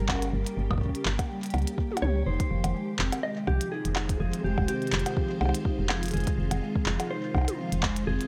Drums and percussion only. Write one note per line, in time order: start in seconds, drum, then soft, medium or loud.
0.09 kick loud
0.09 clap loud
0.09 percussion blips medium
0.12 percussion blips soft
0.15 percussion blips soft
0.19 closed hi-hat medium
0.19 percussion blips soft
0.22 percussion blips soft
0.25 percussion blips soft
0.28 percussion blips soft
0.30 percussion blips soft
0.46 closed hi-hat soft
0.71 kick loud
0.71 percussion blips medium
0.73 kick medium
0.78 kick medium
0.81 kick medium
0.86 kick soft
0.89 kick soft
0.95 closed hi-hat soft
1.05 clap loud
1.19 kick loud
1.19 closed hi-hat medium
1.19 percussion blips medium
1.43 closed hi-hat soft
1.46 closed hi-hat soft
1.50 closed hi-hat soft
1.54 closed hi-hat soft
1.54 percussion blips medium
1.58 closed hi-hat soft
1.62 closed hi-hat soft
1.67 closed hi-hat medium
1.78 kick loud
1.92 high tom soft
1.97 closed hi-hat medium
1.97 percussion blips medium
2.02 mid tom medium
2.40 kick loud
2.40 closed hi-hat medium
2.64 closed hi-hat medium
2.64 percussion blips medium
2.99 clap loud
3.12 closed hi-hat medium
3.12 percussion blips medium
3.47 kick loud
3.47 percussion blips medium
3.61 closed hi-hat medium
3.85 closed hi-hat medium
3.96 clap loud
3.96 percussion blips medium
4.09 kick loud
4.09 closed hi-hat medium
4.33 closed hi-hat medium
4.58 kick loud
4.58 percussion blips medium
4.68 closed hi-hat medium
4.82 closed hi-hat soft
4.87 closed hi-hat soft
4.93 clap loud
4.93 closed hi-hat soft
4.99 closed hi-hat soft
5.06 closed hi-hat medium
5.06 percussion blips medium
5.17 kick loud
5.41 percussion blips soft
5.45 percussion blips soft
5.49 percussion blips soft
5.55 closed hi-hat medium
5.65 kick loud
5.89 clap loud
5.89 percussion blips medium
6.03 closed hi-hat medium
6.06 closed hi-hat medium
6.08 closed hi-hat soft
6.11 closed hi-hat soft
6.17 closed hi-hat soft
6.20 closed hi-hat soft
6.24 closed hi-hat soft
6.27 kick loud
6.27 closed hi-hat soft
6.51 closed hi-hat medium
6.51 percussion blips medium
6.75 kick loud
6.86 clap loud
7.00 closed hi-hat medium
7.00 percussion blips soft
7.35 kick loud
7.35 percussion blips soft
7.38 percussion blips soft
7.41 percussion blips soft
7.45 closed hi-hat medium
7.45 high tom medium
7.45 percussion blips soft
7.72 closed hi-hat medium
7.83 kick loud
7.83 clap loud
7.83 percussion blips medium
7.96 closed hi-hat medium
8.21 closed hi-hat medium